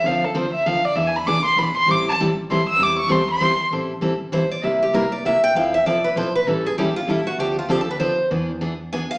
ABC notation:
X:1
M:3/4
L:1/16
Q:"Swing" 1/4=196
K:Am
V:1 name="Violin"
f2 A2 c2 e2 f2 d2 | (3e2 ^g2 b2 d'2 c'2 b2 c'2 | d'2 a2 z4 c'2 e'2 | d'2 ^c'2 =c'2 c'4- c' z |
z12 | z12 | z12 | z12 |
z12 | z12 |]
V:2 name="Steel-string acoustic guitar"
z12 | z12 | z12 | z12 |
z8 c2 d2 | e2 G2 _B2 d2 e2 g2 | f2 e2 d2 B2 c2 B2 | A2 ^G2 =G2 F2 E2 ^F2 |
G2 F2 (3G2 A2 B2 c4 | z8 ^g2 f2 |]
V:3 name="Steel-string acoustic guitar"
[D,F,CDA]2 z2 [D,F,CDA]2 z2 [D,F,CDA]2 z2 | [E,B,D^G]2 z2 [E,B,DG]2 z2 [E,B,DG]2 z2 | [E,G,CEA]2 z2 [E,G,CEA]2 z2 [E,G,CEA]2 z2 | [E,G,CEA]2 z2 [E,G,CEA]2 z2 [E,G,CEA]2 z2 |
[E,G,CEA]2 z2 [E,G,CEA]2 z2 [E,G,CEA]2 z2 | [C,G,_B,EG]2 z2 [C,G,B,EG]2 z2 [C,G,B,EG]2 z2 | [F,CEA]2 z2 [F,CEA]2 z2 [F,CEA]2 z2 | [E,G,^CEA]2 z2 [E,G,CEA]2 z2 [E,G,CEA]2 z2 |
[D,F,CDA]2 z2 [D,F,CDA]2 z2 [D,F,CDA]2 z2 | [E,B,D^G]2 z2 [E,B,DG]2 z2 [E,B,DG]2 z2 |]
V:4 name="Upright bass" clef=bass
D,,12 | E,,4 C,,4 B,,,4 | A,,,12 | E,,12 |
A,,,12 | C,,12 | F,,4 C,,4 B,,,4 | A,,,12 |
D,,12 | E,,12 |]